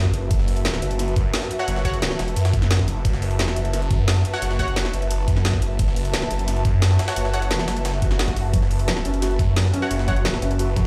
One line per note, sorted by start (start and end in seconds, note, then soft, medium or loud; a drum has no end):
0.00 0.12 F#2 medium
0.00 10.87 F#4 medium
0.00 10.87 B4 medium
0.00 10.87 E5 medium
0.00 10.87 A5 loud
0.05 kick medium
0.05 snare soft
0.14 0.29 F#1 loud
0.14 closed hi-hat medium
0.31 0.81 F#1 medium
0.31 kick loud
0.31 closed hi-hat loud
0.31 closed hi-hat medium
0.39 snare soft
0.48 closed hi-hat medium
0.48 open hi-hat medium
0.56 closed hi-hat soft
0.65 snare loud
0.65 closed hi-hat medium
0.74 snare medium
0.82 1.15 F#1 loud
0.82 closed hi-hat medium
0.91 closed hi-hat soft
0.99 snare soft
0.99 closed hi-hat loud
0.99 closed hi-hat medium
1.08 closed hi-hat soft
1.16 1.49 F#2 loud
1.16 kick loud
1.16 closed hi-hat medium
1.34 snare loud
1.34 closed hi-hat medium
1.42 snare medium
1.51 closed hi-hat medium
1.59 1.83 F#4 loud
1.59 1.83 C#5 medium
1.59 1.83 F#5 loud
1.59 snare soft
1.68 2.18 F#1 loud
1.68 closed hi-hat medium
1.76 snare soft
1.85 1.94 F#4 loud
1.85 1.94 C#5 medium
1.85 1.94 F#5 loud
1.85 kick medium
1.85 closed hi-hat medium
1.94 closed hi-hat soft
2.02 snare loud
2.02 closed hi-hat medium
2.11 snare soft
2.11 snare medium
2.19 2.35 E1 loud
2.19 snare loud
2.19 closed hi-hat medium
2.28 closed hi-hat soft
2.36 2.86 F#2 loud
2.36 closed hi-hat medium
2.45 snare loud
2.45 closed hi-hat medium
2.53 kick loud
2.53 closed hi-hat medium
2.62 snare medium
2.62 closed hi-hat medium
2.71 snare loud
2.71 closed hi-hat medium
2.79 kick medium
2.79 snare soft
2.88 3.04 F#1 loud
2.88 closed hi-hat medium
3.05 3.55 F#1 medium
3.05 kick loud
3.05 closed hi-hat medium
3.14 snare soft
3.22 closed hi-hat medium
3.22 open hi-hat medium
3.31 closed hi-hat soft
3.39 snare loud
3.39 closed hi-hat medium
3.48 snare medium
3.56 3.89 F#1 loud
3.56 closed hi-hat medium
3.65 closed hi-hat soft
3.73 snare soft
3.73 closed hi-hat medium
3.82 closed hi-hat soft
3.91 4.24 F#2 loud
3.91 kick loud
3.91 closed hi-hat medium
4.08 snare loud
4.08 closed hi-hat medium
4.16 snare medium
4.25 closed hi-hat medium
4.33 4.57 F#4 loud
4.33 4.57 C#5 medium
4.33 4.57 F#5 loud
4.33 snare soft
4.42 4.92 F#1 loud
4.42 closed hi-hat medium
4.51 snare soft
4.59 4.68 F#4 loud
4.59 4.68 C#5 medium
4.59 4.68 F#5 loud
4.59 kick medium
4.59 closed hi-hat medium
4.68 closed hi-hat soft
4.76 snare loud
4.76 closed hi-hat medium
4.85 snare soft
4.85 snare medium
4.93 5.26 F#1 medium
4.93 closed hi-hat medium
5.02 closed hi-hat soft
5.11 closed hi-hat loud
5.11 closed hi-hat medium
5.28 5.61 F#2 loud
5.28 kick loud
5.28 closed hi-hat medium
5.36 snare soft
5.45 snare loud
5.45 closed hi-hat medium
5.53 kick medium
5.53 snare soft
5.62 5.78 F#1 medium
5.62 closed hi-hat medium
5.79 6.29 F#1 loud
5.79 kick loud
5.79 closed hi-hat loud
5.79 closed hi-hat medium
5.88 snare soft
5.96 closed hi-hat medium
5.96 open hi-hat medium
6.05 closed hi-hat soft
6.14 snare loud
6.14 closed hi-hat loud
6.14 closed hi-hat medium
6.22 snare medium
6.31 6.64 F#1 loud
6.31 closed hi-hat medium
6.39 closed hi-hat soft
6.48 snare soft
6.48 closed hi-hat loud
6.48 closed hi-hat medium
6.56 closed hi-hat soft
6.65 6.98 F#2 loud
6.65 kick loud
6.65 closed hi-hat medium
6.82 snare loud
6.82 closed hi-hat medium
6.91 snare medium
6.99 snare loud
6.99 closed hi-hat medium
7.08 7.32 F#4 medium
7.08 7.32 C#5 medium
7.08 7.32 F#5 loud
7.08 snare loud
7.08 closed hi-hat medium
7.16 7.67 F#1 loud
7.16 closed hi-hat loud
7.16 closed hi-hat medium
7.25 snare soft
7.34 7.43 F#4 loud
7.34 7.43 C#5 medium
7.34 7.43 F#5 loud
7.34 closed hi-hat medium
7.42 closed hi-hat soft
7.51 snare loud
7.51 closed hi-hat medium
7.51 closed hi-hat loud
7.59 snare soft
7.59 snare medium
7.68 8.52 F#1 loud
7.68 snare loud
7.68 closed hi-hat medium
7.77 closed hi-hat soft
7.85 snare loud
7.85 closed hi-hat medium
7.85 closed hi-hat loud
7.85 swell medium
7.94 snare soft
8.02 kick loud
8.02 closed hi-hat medium
8.11 snare medium
8.19 snare loud
8.19 closed hi-hat medium
8.28 kick medium
8.28 snare soft
8.28 closed hi-hat soft
8.37 closed hi-hat medium
8.37 open hi-hat medium
8.54 9.04 F#1 medium
8.54 8.57 F#3 medium
8.54 kick loud
8.54 closed hi-hat loud
8.54 closed hi-hat medium
8.62 snare soft
8.71 closed hi-hat medium
8.71 open hi-hat medium
8.79 closed hi-hat soft
8.88 8.97 F#3 medium
8.88 snare loud
8.88 closed hi-hat medium
8.88 closed hi-hat loud
8.97 snare medium
9.05 9.38 F#1 loud
9.05 9.14 C#4 medium
9.05 closed hi-hat medium
9.14 closed hi-hat soft
9.22 9.31 F#4 medium
9.22 snare soft
9.22 closed hi-hat medium
9.22 closed hi-hat loud
9.31 closed hi-hat soft
9.39 9.72 F#2 medium
9.39 kick loud
9.39 closed hi-hat medium
9.56 snare loud
9.56 closed hi-hat medium
9.56 closed hi-hat loud
9.65 snare medium
9.74 9.80 C#4 loud
9.74 closed hi-hat medium
9.82 10.06 F#4 loud
9.82 10.06 C#5 medium
9.82 10.06 F#5 loud
9.82 snare soft
9.91 10.41 F#1 loud
9.91 9.94 C#4 medium
9.91 closed hi-hat loud
9.91 closed hi-hat medium
9.99 snare soft
10.08 10.12 F#3 medium
10.08 10.17 F#4 loud
10.08 10.17 C#5 loud
10.08 10.17 F#5 loud
10.08 kick medium
10.08 closed hi-hat medium
10.16 closed hi-hat soft
10.25 10.31 F#3 medium
10.25 snare loud
10.25 closed hi-hat medium
10.34 snare soft
10.34 snare medium
10.42 10.75 F#1 loud
10.42 10.51 C#4 medium
10.42 closed hi-hat medium
10.51 closed hi-hat soft
10.59 10.65 F#4 medium
10.59 closed hi-hat medium
10.76 10.87 F#2 medium
10.76 10.83 F#3 loud
10.76 kick loud
10.76 closed hi-hat medium